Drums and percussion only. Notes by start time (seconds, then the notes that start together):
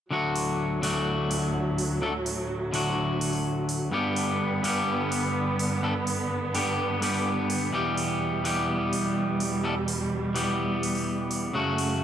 0.36 open hi-hat
0.83 open hi-hat
1.31 open hi-hat
1.78 open hi-hat
2.26 open hi-hat
2.74 open hi-hat
3.21 open hi-hat
3.33 open hi-hat
3.69 open hi-hat
4.16 open hi-hat
4.64 open hi-hat
5.12 open hi-hat
5.59 open hi-hat
6.07 open hi-hat
6.55 open hi-hat
7.02 open hi-hat
7.14 open hi-hat
7.50 open hi-hat
7.97 open hi-hat
8.45 open hi-hat
8.93 open hi-hat
9.40 open hi-hat
9.88 open hi-hat
10.36 open hi-hat
10.83 open hi-hat
10.95 open hi-hat
11.31 open hi-hat
11.78 open hi-hat